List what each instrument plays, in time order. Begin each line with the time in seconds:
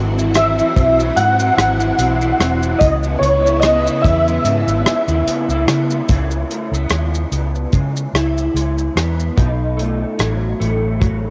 Already playing: fingered electric bass G#1, clean electric guitar G#2 F#3 C4, string machine E3 C4 F#4
0.18 clean electric guitar E4, shaker
0.34 clean electric guitar C4, synth keys E5, cross-stick, closed hi-hat, shaker
0.58 clean electric guitar E4, shaker
0.76 fingered electric bass B1, clean electric guitar C4, kick, closed hi-hat, shaker
0.99 clean electric guitar F#3, shaker
1.16 fingered electric bass G#2, clean electric guitar G#2, synth keys F#5, closed hi-hat, shaker
1.39 clean electric guitar C4, shaker
1.57 fingered electric bass G#1, clean electric guitar F#3, cross-stick, closed hi-hat, shaker
1.79 clean electric guitar E4, shaker
1.98 fingered electric bass B1, clean electric guitar C4, closed hi-hat, shaker
2.21 clean electric guitar E4, shaker
2.39 fingered electric bass E1, clean electric guitar C4, cross-stick, closed hi-hat, shaker
2.62 clean electric guitar F#3, shaker
2.79 fingered electric bass C#2, clean electric guitar C#3, string machine C#3 B3 E4, synth keys D#5, kick, closed hi-hat, shaker
3.03 clean electric guitar B3, shaker
3.19 fingered electric bass C#2, clean electric guitar G#3, synth keys C#5
3.23 closed hi-hat, shaker
3.44 clean electric guitar E4, shaker
3.60 clean electric guitar B3, synth keys D#5, cross-stick, closed hi-hat, shaker
3.85 clean electric guitar E4, shaker
4.02 fingered electric bass E2, clean electric guitar B3, synth keys E5, kick, closed hi-hat, shaker
4.27 clean electric guitar G#3, shaker
4.44 fingered electric bass G#2, clean electric guitar C#3, closed hi-hat, shaker
4.67 fingered electric bass G#1, clean electric guitar B3, shaker
4.86 clean electric guitar G#3, cross-stick, closed hi-hat, shaker
5.08 fingered electric bass D#2, clean electric guitar E4, shaker
5.27 clean electric guitar B3, muted fingered electric bass stroke, closed hi-hat, shaker
5.49 fingered electric bass C#2, clean electric guitar E4, shaker
5.67 fingered electric bass C#3, clean electric guitar B3, cross-stick, closed hi-hat, shaker
5.91 clean electric guitar G#3, shaker
6.09 fingered electric bass C#2, clean electric guitar C#3 E4, kick, closed hi-hat, shaker
6.31 shaker
6.51 clean electric guitar A3, closed hi-hat, shaker
6.71 fingered electric bass C#2, clean electric guitar B3, shaker
6.90 fingered electric bass D#2, clean electric guitar G#3, cross-stick, closed hi-hat, shaker
7.14 shaker
7.32 fingered electric bass C#2, clean electric guitar B3, closed hi-hat, shaker
7.55 shaker
7.73 fingered electric bass C#3, clean electric guitar G#3, kick, closed hi-hat, shaker
7.96 shaker
8.14 fingered electric bass C#2, clean electric guitar E4, cross-stick, closed hi-hat, shaker
8.38 shaker
8.54 fingered electric bass C#2, clean electric guitar G#3, closed hi-hat, shaker
8.78 shaker
8.96 fingered electric bass E2, clean electric guitar B3, cross-stick, closed hi-hat, shaker
9.20 shaker
9.36 fingered electric bass B1, clean electric guitar B2 D#4, kick, closed hi-hat
9.77 clean electric guitar A3, closed hi-hat
10.19 fingered electric bass A1, clean electric guitar F#3, cross-stick, closed hi-hat
10.60 fingered electric bass A1, clean electric guitar A3, closed hi-hat
11.00 clean electric guitar F#3, kick, closed hi-hat